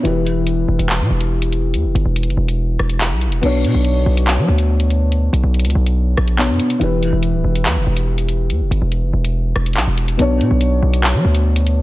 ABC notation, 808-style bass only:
X:1
M:4/4
L:1/16
Q:1/4=142
K:Bm
V:1 name="808-style bass" clef=bass
E,,,6 E,,, E,,,2 B,, E,,,6 | E,, E,,, G,,, E,,,2 F,,, E,,,4 E,,,3 B,,,3/2 E,,,3/2 | B,,,2 B,, B,,,3 B,,,3 F, D,,6- | D,,2 B,,, B,,,2 C,, B,,,4 ^A,,,3 F,, z2 |
E,,,3 E,,,2 D,,, E,,,2 E,, E,,, E,,,6 | E,, E,,, G,,, E,,,2 F,,, E,,,4 E,,,2 B,,, E,,,3 | B,,,2 B,, B,,,3 B,,,3 F, D,,6 |]